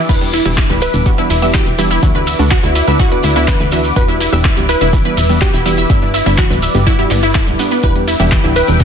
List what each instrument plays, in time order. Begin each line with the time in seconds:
Already playing: analog synth pad D6
0.09 analog synth bass E1, synth pluck E3 G3 B3 D4 E4 G4 B4 E5, analog synth pad B4 E5, kick, closed hi-hat, crash, shekere
0.21 synth pluck E3 G3 B3 D4 G4, closed hi-hat
0.33 synth pluck E4 E5, open hi-hat, ride, shekere
0.45 analog synth bass E1, synth pluck E3 G3 B3 D4 E4 G4 E5, closed hi-hat, shekere
0.58 synth pluck E3 E4, kick, clap, closed hi-hat, shekere
0.70 analog synth bass D1, synth pluck E3 G3 B3 D4 G4 B4 B5, closed hi-hat, shekere
0.82 synth pluck B4 E5 E6, open hi-hat, ride, shekere
0.94 analog synth bass E1, synth pluck E3 G3 B3 D4 B4, closed hi-hat, shekere
1.06 synth pluck E3 G3 B3 D4 F#4 G4 F#5, kick, closed hi-hat, shekere
1.18 synth pluck E3 G3 B3 D4 E4 B4 E5, closed hi-hat
1.30 analog synth bass E1, synth pluck E4 E5, open hi-hat, ride, shekere
1.42 synth pluck E3 G3 B3 D4 G4 E5 E6, closed hi-hat, shekere
1.54 synth pluck E3 G3 D4 E4 F#4 G4 E5, kick, clap, closed hi-hat, shekere
1.66 analog synth bass E1, closed hi-hat, shekere
1.78 synth pluck E3 G3 B3 D4 E4 G4 E5, open hi-hat, ride, shekere
1.90 synth pluck E4 E5, closed hi-hat, shekere
2.03 analog synth bass D2, synth pluck D3 E3 B3 D4 E4 F#4, analog synth pad D5 F#5, kick, closed hi-hat, shekere
2.15 synth pluck D3 B3 D4 F#4 B4 B5, closed hi-hat
2.27 synth pluck E5 E6, open hi-hat, ride, shekere
2.39 analog synth bass D2, synth pluck D3 B3 D4 F#4, closed hi-hat, shekere
2.51 synth pluck F#4 F#5, kick, clap, closed hi-hat, shekere
2.63 analog synth bass D2, synth pluck D3 B3 D4 E4 F#4 E5, closed hi-hat, shekere
2.75 synth pluck E4 E5, open hi-hat, ride, shekere
2.87 analog synth bass D2, synth pluck D3 B3 D4 B4 E5 E6, closed hi-hat, shekere
3.00 synth pluck D3 B3 D4 E4 F#4 E5, kick, closed hi-hat, shekere
3.12 synth pluck D3 B3 D4 B4, closed hi-hat
3.23 analog synth bass D2, synth pluck E4 E5, open hi-hat, ride, shekere
3.36 synth pluck D3 B3 D4 E4 F#4 E5, closed hi-hat, shekere
3.48 synth pluck D3 E3 B3 D4 E4 B4, kick, clap, closed hi-hat, shekere
3.60 analog synth bass D2, synth pluck B4 B5, closed hi-hat, shekere
3.72 synth pluck E3 B3 D4 F#4 E5 E6, open hi-hat, ride, shekere
3.84 closed hi-hat, shekere
3.96 analog synth bass E1, synth pluck E3 G3 B3 D4 F#4 G4 B4 F#5, analog synth pad E5, kick, closed hi-hat, shekere
4.08 synth pluck E3 G3 B3 D4 E4 G4 E5, closed hi-hat
4.20 synth pluck E4 E5, open hi-hat, ride, shekere
4.33 analog synth bass E1, synth pluck E3 G3 B3 D4 G4 E5 E6, closed hi-hat, shekere
4.44 synth pluck E4 E5, kick, clap, closed hi-hat, shekere
4.57 analog synth bass D1, synth pluck E3 G3 B3 D4 G4, closed hi-hat, shekere
4.69 synth pluck E4 B4 E5, open hi-hat, ride, shekere
4.81 analog synth bass E1, synth pluck E3 G3 B3 D4 E4 B4 E5, closed hi-hat, shekere
4.93 synth pluck E3 G3 B3 D4 E4 G4, kick, closed hi-hat, shekere
5.05 synth pluck E3 G3 B3 D4 B4 B5, closed hi-hat
5.17 analog synth bass E1, synth pluck E5 E6, open hi-hat, ride, shekere
5.29 synth pluck E3 G3 B3 D4 G4, closed hi-hat, shekere
5.41 synth pluck E3 G3 B3 F#4 G4 F#5, kick, clap, closed hi-hat, shekere
5.54 analog synth bass E1, synth pluck E4 E5, closed hi-hat, shekere
5.66 synth pluck E3 G3 B3 D4 E4 G4 E5, open hi-hat, ride, shekere
5.77 synth pluck E5 E6, closed hi-hat, shekere
5.90 analog synth bass G1, synth pluck G2 G3 B3 D4 E4 E5, analog synth pad D5, kick, closed hi-hat, shekere
6.02 synth pluck G2 G3 B3 D4, closed hi-hat
6.14 synth pluck E4 E5, open hi-hat, ride, shekere
6.26 analog synth bass G1, synth pluck G2 G3 B3 D4 E4 E5, closed hi-hat, shekere
6.38 synth pluck E3 E4 F#4, kick, clap, closed hi-hat, shekere
6.50 analog synth bass D1, synth pluck G2 G3 B3 D4 B4 B5, closed hi-hat, shekere
6.62 synth pluck E5 E6, open hi-hat, ride, shekere
6.74 analog synth bass G1, synth pluck G2 G3 B3 G4, closed hi-hat, shekere
6.87 synth pluck G2 G3 B3 D4 E4 F#4 F#5, kick, closed hi-hat, shekere
6.99 synth pluck G2 G3 B3 E4 G4 E5, closed hi-hat
7.11 analog synth bass G1, synth pluck G2 G3 B3 D4 E4 E5, clap, open hi-hat, ride, shekere
7.23 synth pluck E4 E5, closed hi-hat, shekere
7.34 synth pluck G2 G3 B3 E4 A4 A5, kick, clap, closed hi-hat, shekere
7.47 analog synth bass D1, synth pluck G2 G3 B3 E4, closed hi-hat, shekere
7.59 synth pluck G3 B3 D4 B4, open hi-hat, ride, shekere
7.71 synth pluck B3 B4, closed hi-hat, shekere
7.83 analog synth bass E1, synth pluck E3 G3 B3 D4 E4 G4 B4 E5, analog synth pad B4 E5 G5 D6, kick, closed hi-hat, shekere
7.95 synth pluck E3 G3 B3 D4 G4, closed hi-hat
8.08 synth pluck E4 E5, open hi-hat, ride, shekere
8.19 analog synth bass E1, synth pluck E3 G3 B3 D4 E4 G4 E5, closed hi-hat, shekere
8.32 synth pluck E3 E4, kick, clap, closed hi-hat, shekere
8.44 analog synth bass D1, synth pluck E3 G3 B3 D4 E4 G4 E5, closed hi-hat, shekere
8.56 synth pluck B4 E5 E6, open hi-hat, ride, shekere
8.67 analog synth bass E1, synth pluck E3 G3 B3 D4 B4, closed hi-hat, shekere
8.80 synth pluck E3 G3 B3 D4 F#4 G4 F#5, kick, closed hi-hat, shekere